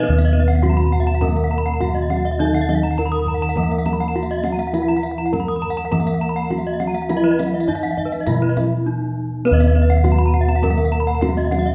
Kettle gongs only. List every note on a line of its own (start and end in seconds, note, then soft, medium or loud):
0.00 0.58 B2 medium
0.00 1.76 B4 medium
0.09 3.55 D#2 loud
0.63 0.71 E4 soft
1.81 1.89 E4 soft
2.40 4.12 D#4 medium
2.99 3.07 E4 soft
3.58 5.30 E3 soft
4.16 4.24 E4 soft
4.75 5.32 E4 medium
5.33 5.41 E4 soft
5.93 7.65 E3 medium
6.52 6.60 E4 soft
7.10 7.68 E4 medium
7.70 7.78 E4 soft
8.28 10.01 B2 medium
8.88 8.96 E4 soft
9.46 11.18 B4 medium
9.51 11.75 D#2 loud
10.05 10.13 E4 soft
11.22 11.30 E4 soft